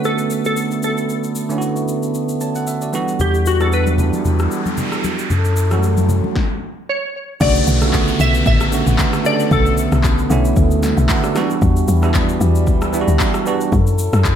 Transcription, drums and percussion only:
0.04 shaker medium
0.18 shaker medium
0.30 shaker medium
0.45 shaker medium
0.57 shaker medium
0.71 shaker medium
0.83 shaker medium
0.98 shaker medium
1.09 shaker medium
1.24 shaker soft
1.35 shaker loud
1.50 shaker soft
1.62 shaker medium
1.76 shaker soft
1.88 shaker medium
2.03 shaker soft
2.14 shaker medium
2.29 shaker medium
2.41 shaker medium
2.55 shaker medium
2.67 shaker medium
2.82 shaker medium
2.93 shaker medium
3.08 shaker medium
3.20 low conga medium
3.20 shaker medium
3.34 shaker medium
3.46 shaker loud
3.60 cross-stick medium
3.60 shaker medium
3.72 shaker medium
3.87 high conga medium
3.87 shaker soft
3.98 low conga medium
3.98 shaker medium
4.13 high conga medium
4.13 shaker medium
4.25 low conga medium
4.25 shaker medium
4.39 cross-stick medium
4.39 shaker medium
4.51 shaker medium
4.66 high conga medium
4.66 shaker medium
4.78 low conga medium
4.78 shaker medium
4.92 cross-stick loud
4.92 shaker medium
5.04 high conga medium
5.04 shaker medium
5.19 shaker medium
5.30 low conga medium
5.30 shaker medium
5.45 shaker medium
5.57 shaker loud
5.71 cross-stick medium
5.71 shaker medium
5.83 shaker medium
5.97 high conga medium
5.97 shaker soft
6.09 low conga medium
6.09 shaker medium
6.24 high conga medium
6.36 kick loud
6.36 snare medium
7.41 kick loud
7.41 crash loud
7.41 shaker medium
7.55 shaker medium
7.67 shaker loud
7.82 cross-stick medium
7.82 shaker medium
7.93 kick loud
7.93 clap loud
7.93 shaker medium
8.08 shaker medium
8.20 shaker medium
8.34 shaker medium
8.46 kick loud
8.46 shaker medium
8.60 cross-stick loud
8.60 shaker medium
8.72 shaker loud
8.87 shaker medium
8.99 kick loud
8.99 clap loud
8.99 shaker loud
9.13 cross-stick loud
9.13 shaker medium
9.25 shaker medium
9.40 shaker medium
9.51 kick loud
9.51 shaker medium
9.66 shaker medium
9.78 shaker loud
9.92 cross-stick medium
9.92 shaker medium
10.04 kick loud
10.04 clap loud
10.04 shaker medium
10.18 shaker medium
10.30 shaker medium
10.45 shaker medium
10.57 kick loud
10.57 shaker medium
10.71 shaker medium
10.83 snare medium
10.83 shaker loud
10.97 shaker medium
11.09 kick loud
11.09 clap loud
11.09 shaker medium
11.24 cross-stick loud
11.24 shaker medium
11.36 cross-stick loud
11.36 snare medium
11.36 shaker medium
11.50 shaker medium
11.62 kick loud
11.62 shaker medium
11.76 shaker medium
11.88 shaker loud
12.03 cross-stick medium
12.03 shaker medium
12.14 kick loud
12.14 clap loud
12.14 shaker medium
12.29 shaker medium
12.41 shaker medium
12.55 shaker medium
12.67 kick loud
12.67 shaker medium
12.81 cross-stick loud
12.81 shaker medium
12.93 shaker loud
13.08 shaker medium
13.20 kick loud
13.20 clap loud
13.20 shaker loud
13.34 cross-stick loud
13.34 shaker medium
13.46 shaker medium
13.61 shaker medium
13.72 kick loud
13.72 shaker medium
13.87 shaker medium
13.99 shaker loud
14.13 cross-stick loud
14.13 shaker medium
14.25 kick loud
14.25 clap loud
14.25 shaker medium

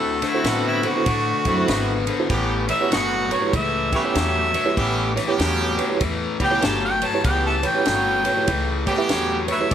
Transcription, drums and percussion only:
0.22 snare soft
0.22 ride medium
0.44 snare medium
0.44 ride medium
0.83 ride medium
1.06 kick loud
1.06 ride medium
1.45 kick medium
1.45 ride medium
1.68 snare loud
1.68 ride medium
2.07 ride medium
2.30 kick loud
2.30 ride medium
2.69 ride medium
2.92 snare loud
2.92 ride medium
3.31 ride medium
3.53 kick loud
3.53 ride medium
3.93 kick medium
3.93 ride medium
4.15 snare loud
4.15 ride medium
4.54 ride medium
4.77 kick loud
4.77 ride medium
5.17 snare soft
5.17 ride medium
5.40 snare loud
5.40 ride medium
5.79 ride medium
6.01 kick loud
6.01 ride medium
6.40 kick medium
6.40 ride medium
6.62 snare loud
6.62 ride medium
7.02 ride medium
7.24 kick loud
7.24 ride medium
7.63 ride medium
7.86 snare loud
7.86 ride medium
8.25 ride medium
8.48 kick loud
8.48 ride medium
8.87 kick medium
8.87 ride medium
9.09 snare loud
9.09 ride medium
9.48 ride medium
9.71 kick loud
9.71 ride medium

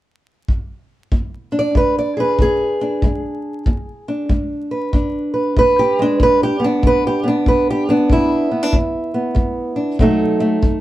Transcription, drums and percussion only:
0.48 kick medium
1.12 kick medium
1.75 kick medium
2.39 kick medium
3.02 kick medium
3.66 kick medium
4.30 kick medium
4.93 kick medium
5.57 kick medium
6.20 kick medium
6.83 kick medium
7.46 kick medium
8.10 kick medium
8.73 kick medium
9.36 kick medium
9.99 kick medium
10.63 kick medium

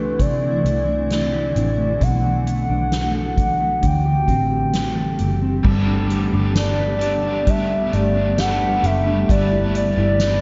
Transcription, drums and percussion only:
0.19 kick medium
0.19 closed hi-hat medium
0.66 closed hi-hat soft
1.10 snare medium
1.10 closed hi-hat medium
1.56 closed hi-hat soft
2.01 kick loud
2.01 closed hi-hat medium
2.47 closed hi-hat soft
2.92 snare loud
2.92 closed hi-hat medium
3.37 kick medium
3.37 closed hi-hat medium
3.83 kick medium
3.83 closed hi-hat medium
4.28 kick medium
4.28 closed hi-hat soft
4.73 snare medium
4.73 closed hi-hat medium
5.19 closed hi-hat soft
5.64 kick loud
5.64 crash loud
6.10 closed hi-hat soft
6.55 snare loud
6.55 closed hi-hat medium
6.55 tambourine medium
7.01 closed hi-hat medium
7.47 kick medium
7.47 closed hi-hat medium
7.93 closed hi-hat soft
8.38 snare loud
8.38 closed hi-hat medium
8.38 tambourine medium
8.84 closed hi-hat soft
9.29 kick loud
9.29 closed hi-hat medium
9.75 closed hi-hat medium
10.20 snare loud
10.20 closed hi-hat medium
10.20 tambourine medium

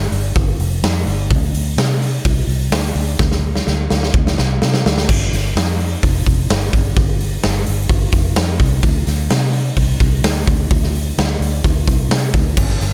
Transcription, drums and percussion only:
0.12 open hi-hat medium
0.35 kick loud
0.35 open hi-hat medium
0.60 open hi-hat medium
0.83 snare loud
0.83 open hi-hat medium
1.07 open hi-hat medium
1.30 kick loud
1.30 open hi-hat medium
1.54 open hi-hat medium
1.78 snare loud
1.78 open hi-hat medium
2.02 open hi-hat medium
2.25 kick loud
2.25 open hi-hat medium
2.49 open hi-hat medium
2.72 snare loud
2.72 open hi-hat loud
2.96 open hi-hat medium
3.19 kick loud
3.19 snare medium
3.32 snare medium
3.56 snare medium
3.67 snare medium
3.90 snare medium
4.03 snare medium
4.14 kick loud
4.27 snare medium
4.38 snare medium
4.62 snare loud
4.74 snare medium
4.86 snare loud
4.98 snare medium
5.09 kick loud
5.09 crash loud
5.22 snare soft
5.33 snare soft
5.33 open hi-hat medium
5.56 snare loud
5.56 open hi-hat medium
5.80 open hi-hat medium
6.03 kick medium
6.03 open hi-hat medium
6.26 kick medium
6.26 open hi-hat medium
6.50 snare loud
6.50 open hi-hat medium
6.73 kick loud
6.73 open hi-hat medium
6.97 kick loud
6.97 open hi-hat medium
7.20 open hi-hat medium
7.43 snare loud
7.43 open hi-hat medium
7.66 open hi-hat medium
7.89 kick loud
7.89 open hi-hat medium
8.12 kick medium
8.12 open hi-hat medium
8.36 snare loud
8.36 open hi-hat medium
8.59 kick medium
8.59 open hi-hat medium
8.83 kick loud
8.83 open hi-hat medium
9.07 snare soft
9.07 open hi-hat medium
9.30 snare loud
9.30 open hi-hat medium
9.53 open hi-hat medium
9.76 kick medium
9.76 open hi-hat loud
10.00 kick medium
10.00 open hi-hat medium
10.24 snare loud
10.24 open hi-hat medium
10.47 kick loud
10.47 open hi-hat medium
10.71 kick loud
10.71 open hi-hat medium
10.84 snare soft
10.95 open hi-hat medium
11.18 snare loud
11.18 open hi-hat medium
11.42 open hi-hat medium
11.64 kick medium
11.64 open hi-hat medium
11.88 kick medium
11.88 open hi-hat medium
12.11 snare loud
12.11 open hi-hat medium
12.34 kick loud
12.34 open hi-hat medium
12.57 kick loud
12.57 crash loud
12.70 snare soft
12.81 snare soft
12.81 open hi-hat medium

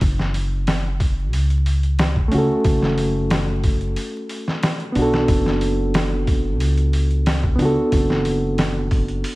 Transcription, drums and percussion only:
0.01 kick loud
0.01 open hi-hat medium
0.19 snare soft
0.34 open hi-hat medium
0.67 snare loud
0.67 open hi-hat medium
1.00 kick medium
1.00 open hi-hat medium
1.33 open hi-hat medium
1.50 closed hi-hat soft
1.66 open hi-hat medium
1.83 closed hi-hat soft
1.99 snare loud
1.99 open hi-hat medium
2.16 kick medium
2.32 open hi-hat medium
2.64 kick loud
2.64 open hi-hat medium
2.82 snare soft
2.98 open hi-hat medium
3.30 snare loud
3.30 open hi-hat medium
3.64 kick medium
3.64 open hi-hat medium
3.81 closed hi-hat soft
3.96 open hi-hat medium
4.29 open hi-hat medium
4.48 snare soft
4.63 snare loud
4.63 open hi-hat medium
4.80 closed hi-hat soft
4.95 open hi-hat medium
5.14 snare soft
5.28 kick loud
5.28 open hi-hat medium
5.46 snare soft
5.61 open hi-hat medium
5.94 snare loud
5.94 open hi-hat medium
6.27 kick medium
6.27 open hi-hat medium
6.60 open hi-hat medium
6.77 closed hi-hat soft
6.93 open hi-hat medium
7.11 closed hi-hat soft
7.26 snare loud
7.26 open hi-hat medium
7.43 kick medium
7.59 open hi-hat medium
7.92 kick loud
7.92 open hi-hat medium
8.10 snare soft
8.25 open hi-hat medium
8.58 snare loud
8.58 open hi-hat medium
8.91 kick medium
8.91 open hi-hat medium
9.08 closed hi-hat soft
9.24 open hi-hat medium

